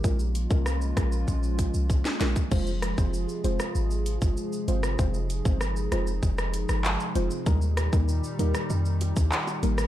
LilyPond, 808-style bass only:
\new Staff \with { instrumentName = "808-style bass" } { \clef bass \time 4/4 \key f \minor \tempo 4 = 97 bes,,8. c,8. bes,,8 bes,,8. c,8 r16 bes,,16 r16 | f,,8. f,,8 r16 f,,16 r16 aes,,8. g,,16 r8 g,,8 | f,,8. g,,8. f,,8 f,,8. g,,8 r16 f,,16 r16 | ees,8. ees,8 r16 ees,16 r16 f,8. ees,16 r8 aes,,8 | }